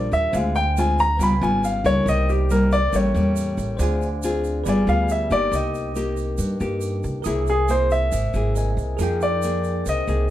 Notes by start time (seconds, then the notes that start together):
Already playing: A#2 G3 D4 F4 A#4 D5 F5 G5
0.12 D#2 E5, shaker
0.31 D2 D3 G#3 C4 F4 C5 E5 F5, shaker
0.35 F5 G#5
0.55 G5, shaker
0.77 G#3 C4 F4 G#5, shaker
0.99 A#5, shaker
1.17 C#2 C#3 G3 B3 F4 B4 F5, shaker
1.21 G5 G#5 B5
1.41 G#1 G3 B3 F4 G#5, shaker
1.64 F5, shaker
1.84 C#2 G3 A#3 D#4 C#5, shaker
2.03 C2 C3 A#4 D5
2.07 D#5 G5, shaker
2.29 G4, shaker
2.50 G3 A#3 D#4 A#4, shaker
2.71 D5, shaker
2.90 A1 A2 A#4 C#5, shaker
2.94 G3 A#3 C#4 C#5 E5 G5
3.14 E2 G3 A#3 C#4, shaker
3.36 shaker
3.57 A1, shaker
3.77 D2 D3 C4 F4 G#4 C5 D5, shaker
3.81 F5 G#5
4.02 shaker
4.23 C4 F4 G#4, shaker
4.44 shaker
4.64 G1 G3 B3 F4 G#4 B4 D5 F5, shaker
4.69 D5 G#5
4.87 D2 B3 F4 G#4 F5, shaker
5.09 E5, shaker
5.30 G1 A#3 D#4 G4 D5, shaker
5.51 C2 C3 A#4 D#5 D6, shaker
5.55 D#5 G5
5.74 shaker
5.96 A#3 D#4 G4, shaker
6.17 shaker
6.38 G2, shaker
6.60 G2 A#3 D#4 G4, shaker
6.81 shaker
7.03 C2, shaker
7.22 C2 C3 A#3 E4 A#4 E5 D#6, shaker
7.27 G#4 G#5
7.47 G#4, shaker
7.69 A#3 E4 G#4 C5, shaker
7.91 E5, shaker
8.12 G#1 C3, shaker
8.34 G#1 A#3 E4 G#4, shaker
8.55 A#4 D#5 E5 G#5, shaker
8.77 C2, shaker
8.97 F2 F3 A#3 D#4 G#4 A#4, shaker
9.01 D#4 G#4 G5
9.21 D5, shaker
9.43 A#3 D#4 G#4, shaker
9.64 shaker
9.86 C2 C3 D#5, shaker
10.07 C2 A#3 D#4 G#4, shaker